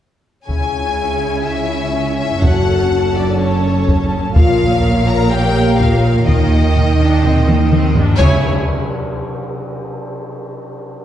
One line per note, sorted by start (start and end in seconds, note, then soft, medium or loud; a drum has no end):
0.46 2.38 C#2 soft
0.46 2.38 C#3 soft
0.46 4.32 C#4 soft
0.46 2.38 E4 soft
0.46 1.41 G#4 medium
0.46 4.31 C#5 soft
0.46 1.40 G#5 medium
0.46 2.38 G#5 soft
0.46 taiko soft
1.44 2.16 E4 medium
1.44 2.16 E5 soft
2.17 2.41 E4 medium
2.17 2.41 E5 medium
2.41 4.31 F#1 soft
2.41 4.31 F#2 soft
2.41 3.14 F#4 medium
2.41 4.31 A4 soft
2.41 3.14 F#5 medium
2.41 4.31 A5 soft
2.41 taiko medium
3.16 3.39 D4 medium
3.16 3.39 D5 soft
3.39 4.11 C#4 medium
3.39 4.10 C#5 soft
3.88 taiko medium
4.35 6.24 A#1 medium
4.35 6.25 A#2 medium
4.35 6.68 A#3 medium
4.35 5.03 F4 medium
4.35 6.68 A#4 medium
4.35 6.24 C#5 medium
4.35 6.24 F5 medium
4.35 5.04 F5 medium
4.35 taiko medium
5.05 5.30 A#4 medium
5.05 5.31 A#5 medium
5.28 5.78 G4 medium
5.28 5.80 G5 medium
5.78 6.27 F4 medium
5.78 6.28 F5 medium
5.78 taiko medium
6.26 7.97 D#2 medium
6.26 7.97 D#3 medium
6.26 7.92 D#4 medium
6.26 7.97 D#5 medium
6.26 7.93 D#5 medium
6.26 7.96 G5 medium
6.26 taiko medium
6.75 6.98 A#3 medium
6.75 taiko low-mid medium
7.00 7.24 D4 medium
7.24 7.48 C4 medium
7.24 taiko low-mid medium
7.48 7.73 A#3 medium
7.48 taiko mid medium
7.72 7.96 C4 medium
7.72 taiko mid medium
7.96 8.21 D4 medium
7.96 taiko low medium
8.18 8.47 C#2 medium
8.18 8.47 C#3 medium
8.18 8.40 C#4 medium
8.18 8.48 E4 medium
8.18 8.46 C#5 medium
8.18 8.47 C#5 medium
8.18 8.48 C#5 medium
8.18 8.46 G#5 medium
8.18 taiko medium
8.18 tam-tam medium